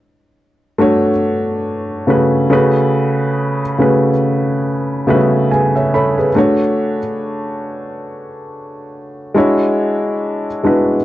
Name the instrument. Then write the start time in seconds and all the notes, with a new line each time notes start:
upright piano
0.78 A3 D4 F#4 C#5
2.07 C#3 A3 C#4 F#4 G#4 B4
2.50 C#3 A3 C#4 F#4 G#4 B4
3.78 C#3 A3 C#4 F#4 G#4 B4
5.07 C#3 A3 B3 F#4 G#4 B4 E5
5.15 C#4
5.51 G#4 B4 G#5
5.76 C#5 E5
5.94 A4 C#5 B5
6.18 G#4 B4
6.35 A3 D4 F#4 C#5
9.34 G#3 D4 E4 F#4 C#5
10.63 G#3 D4 E4 F#4 B4